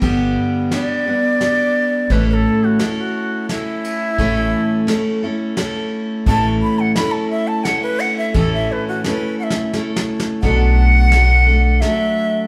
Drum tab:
RD |x-----x-----x-----|x-----x-----x--x--|x-----x-----x-----|x-----x-----x--x--|
HH |------------------|------------------|------------------|------------------|
SD |------o-----o-----|------o-----o-----|------o-----o-----|------o-----o-----|
BD |o-----------------|o-----------------|o-----------------|o-----------------|

RD |x-----------------|------------------|
HH |------------------|x-----x-----x-----|
SD |------o---o-o-o-o-|------o-----o-----|
BD |o-----------------|o-----------------|